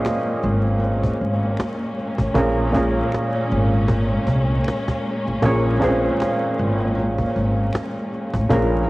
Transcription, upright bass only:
0.44 1.08 G#1 medium
1.21 1.53 G#1 medium
2.19 2.33 A1 medium
2.35 3.00 A#1 loud
3.52 4.16 G#1 loud
4.27 4.60 C2 loud
5.27 5.41 A1 medium
5.43 6.07 A#1 medium
6.59 7.23 G#1 medium
7.36 7.68 G#1 medium
8.34 8.48 A1 medium
8.51 8.90 A#1 loud

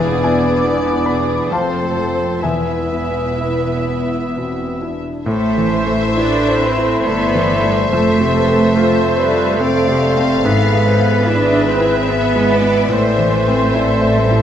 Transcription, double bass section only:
0.00 1.48 E1 medium
1.52 2.41 F1 soft
2.41 5.04 E1 soft
5.25 7.01 A1 medium
7.05 7.90 G1 medium
7.90 9.59 F1 medium
9.60 10.42 F1 medium
10.43 12.91 G#1 medium
12.91 14.42 A1 medium

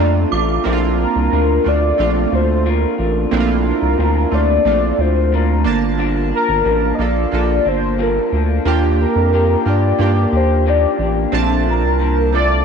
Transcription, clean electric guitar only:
0.00 0.31 A#2 medium
0.00 0.32 A3 medium
0.00 0.32 D4 medium
0.00 0.30 F4 medium
0.31 0.64 A3 soft
0.31 0.64 D4 medium
0.31 0.65 F4 medium
0.64 0.98 A#2 medium
0.64 0.98 A3 medium
0.64 0.98 D4 medium
0.64 0.97 F4 medium
0.98 1.31 D4 soft
0.98 1.32 F4 medium
1.31 1.65 A#2 medium
1.31 1.64 D4 medium
1.31 1.63 F4 medium
1.64 1.97 A3 soft
1.64 1.98 D4 soft
1.64 1.98 F4 soft
1.97 2.31 A#2 medium
1.97 2.32 A3 medium
1.97 2.31 D4 medium
1.97 2.29 F4 medium
2.31 2.66 A3 soft
2.31 2.65 D4 soft
2.31 2.65 F4 medium
2.65 2.98 A#2 medium
2.65 2.98 D4 medium
2.65 2.97 F4 medium
2.98 3.31 A3 soft
2.98 3.32 D4 soft
2.98 3.32 F4 soft
3.31 3.65 A#2 medium
3.31 3.66 A3 medium
3.31 3.65 D4 medium
3.31 3.64 F4 medium
3.65 3.99 D4 medium
3.65 3.99 F4 medium
3.98 4.32 A#2 medium
3.98 4.32 D4 medium
3.98 4.30 F4 medium
4.31 4.65 A3 soft
4.31 4.66 D4 soft
4.31 4.65 F4 medium
4.65 4.99 A#2 medium
4.65 4.99 A3 medium
4.65 4.99 D4 medium
4.65 4.98 F4 medium
4.99 5.34 A3 soft
4.99 5.33 D4 soft
4.99 5.32 F4 soft
5.32 5.66 A#2 medium
5.32 5.64 D4 medium
5.32 5.64 F4 medium
5.65 5.97 F3 soft
5.65 5.98 A#3 soft
5.65 5.99 D4 soft
5.98 6.32 G2 medium
5.98 6.32 F3 medium
5.98 6.32 A#3 medium
5.98 6.30 D4 loud
6.31 6.64 F3 soft
6.31 6.65 A#3 soft
6.31 6.65 D4 medium
6.65 6.99 G2 medium
6.65 6.99 F3 medium
6.65 6.99 A#3 medium
6.65 6.97 D4 medium
6.98 7.32 F3 soft
6.98 7.33 A#3 medium
6.98 7.32 D4 soft
7.32 7.66 G2 medium
7.32 7.66 F3 medium
7.32 7.65 A#3 medium
7.32 7.64 D4 medium
7.65 7.98 F3 soft
7.65 7.99 A#3 medium
7.65 7.99 D4 medium
7.98 8.32 G2 medium
7.98 8.33 F3 medium
7.98 8.33 A#3 medium
7.98 8.31 D4 medium
8.32 8.65 F3 soft
8.32 8.65 A#3 soft
8.32 8.66 D4 medium
8.66 8.99 D#3 medium
8.66 9.00 A#3 medium
8.66 9.00 D4 medium
8.66 8.98 G4 medium
9.00 9.32 A#3 soft
9.00 9.33 D4 medium
9.00 9.33 G4 medium
9.33 9.66 D#3 medium
9.33 9.67 A#3 medium
9.33 9.66 D4 medium
9.33 9.65 G4 medium
9.66 9.99 A#3 soft
9.66 10.00 D4 soft
9.66 9.99 G4 medium
10.00 10.33 D#3 medium
10.00 10.34 A#3 medium
10.00 10.33 D4 medium
10.00 10.32 G4 medium
10.33 10.66 A#3 soft
10.33 10.66 D4 soft
10.33 10.66 G4 soft
10.66 11.00 D#3 medium
10.66 11.00 A#3 medium
10.66 11.00 D4 medium
10.66 10.98 G4 medium
11.00 11.33 A#3 soft
11.00 11.33 D4 soft
11.00 11.33 G4 soft
11.33 11.66 A#2 medium
11.33 11.67 F3 medium
11.33 11.67 A3 medium
11.33 11.65 D4 medium
11.66 11.99 F3 soft
11.66 12.00 D4 medium
12.00 12.33 A#2 medium
12.00 12.33 F3 medium
12.00 12.32 D4 medium
12.33 12.65 F3 soft
12.33 12.65 A3 soft
12.33 12.65 D4 soft

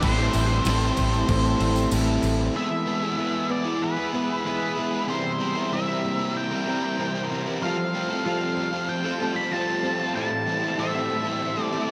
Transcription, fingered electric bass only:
0.03 0.28 A1 medium
0.35 0.59 A1 loud
0.65 0.90 A1 loud
0.98 1.22 A1 medium
1.29 1.54 A1 loud
1.60 1.85 A1 medium
1.92 2.17 A1 loud
2.23 2.48 A1 medium

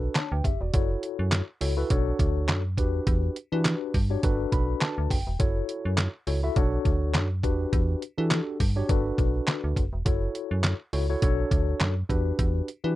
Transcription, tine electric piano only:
0.00 0.51 D4 medium
0.00 0.15 F#4 medium
0.00 0.15 A4 medium
0.00 0.16 B4 medium
0.15 0.31 C#5 soft
0.15 0.31 A5 medium
0.32 0.44 B4 medium
0.32 0.44 G5 medium
0.45 0.60 G4 medium
0.45 0.60 E5 medium
0.61 0.72 F#4 medium
0.61 0.89 D5 medium
0.73 1.42 E4 medium
0.73 1.42 F#4 medium
0.73 1.42 A4 medium
0.73 1.43 C#5 medium
1.61 1.74 E4 medium
1.61 1.74 F#4 medium
1.61 1.74 A4 medium
1.61 1.74 C#5 medium
1.77 1.90 E4 loud
1.77 1.89 F#4 medium
1.77 1.89 A4 medium
1.77 1.90 B4 medium
1.90 2.62 D4 medium
1.90 2.62 F#4 medium
1.90 2.62 A4 medium
1.90 2.62 C#5 medium
2.77 3.36 D4 medium
2.77 3.36 F#4 medium
2.77 3.36 G4 medium
2.77 3.36 B4 medium
3.52 3.96 D4 medium
3.52 3.96 F#4 medium
3.52 3.96 G4 medium
3.52 3.96 B4 loud
4.10 4.22 D4 medium
4.10 4.22 F#4 medium
4.10 4.23 G4 medium
4.10 4.24 C#5 medium
4.23 5.17 D4 medium
4.23 5.17 F#4 medium
4.23 5.17 A4 medium
4.23 5.17 B4 loud
4.52 4.80 B5 medium
4.82 5.09 A5 medium
5.11 5.38 G5 medium
5.39 6.08 E4 medium
5.39 6.08 F#4 medium
5.39 6.08 A4 medium
5.39 6.09 C#5 loud
6.27 6.40 E4 medium
6.27 6.40 F#4 medium
6.27 6.40 A4 medium
6.27 6.40 C#5 medium
6.43 6.56 E4 medium
6.43 6.55 F#4 medium
6.43 6.55 A4 medium
6.43 6.57 E5 medium
6.56 7.27 D4 medium
6.56 7.28 F#4 medium
6.56 7.28 A4 medium
6.56 7.28 C#5 loud
7.43 8.02 D4 medium
7.43 8.02 F#4 medium
7.43 8.02 G4 medium
7.43 8.02 B4 medium
8.17 8.61 D4 medium
8.17 8.61 F#4 medium
8.17 8.62 G4 medium
8.17 8.62 A4 medium
8.76 8.88 D4 medium
8.76 8.88 F#4 medium
8.76 8.89 G4 medium
8.76 8.89 C#5 loud
8.89 9.83 D4 medium
8.89 9.83 F#4 medium
8.89 9.83 A4 medium
8.89 9.83 B4 loud
10.05 10.74 E4 medium
10.05 10.74 F#4 medium
10.05 10.74 A4 medium
10.05 10.75 C#5 medium
10.93 11.06 E4 medium
10.93 11.06 F#4 medium
10.93 11.06 A4 medium
10.93 11.06 C#5 medium
11.09 11.22 E4 medium
11.09 11.21 F#4 medium
11.09 11.21 A4 medium
11.09 11.21 C#5 loud
11.22 11.93 D4 medium
11.22 11.94 F#4 medium
11.22 11.94 A4 medium
11.22 11.94 C#5 loud
12.09 12.68 D4 medium
12.09 12.68 F#4 medium
12.09 12.68 G4 medium
12.09 12.68 B4 loud
12.84 12.96 D4 medium
12.84 12.96 F#4 medium
12.84 12.96 G4 medium
12.84 12.96 B4 loud

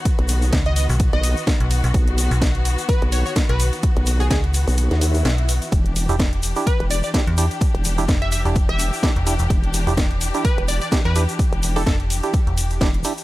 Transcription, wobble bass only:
0.19 0.51 B1 loud
1.13 1.35 B1 loud
1.94 2.29 B1 loud
3.02 3.24 B1 loud
3.97 4.29 B1 loud
4.68 4.89 B1 loud
4.91 5.23 D#2 loud
5.72 6.07 E1 loud
6.80 7.02 E1 medium
7.75 8.07 E1 loud
8.69 8.90 E1 loud
9.50 9.85 E1 loud
10.58 10.80 E1 loud
11.52 11.85 E1 loud
12.81 13.03 E1 loud

